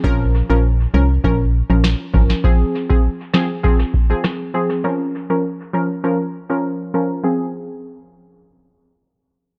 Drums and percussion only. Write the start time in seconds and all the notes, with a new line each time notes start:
0.04 kick
1.24 kick
1.84 cross-stick, snare
2.14 kick
2.30 snare
2.44 kick
2.90 kick
3.34 cross-stick, snare
3.64 kick
3.94 kick
4.24 cross-stick, snare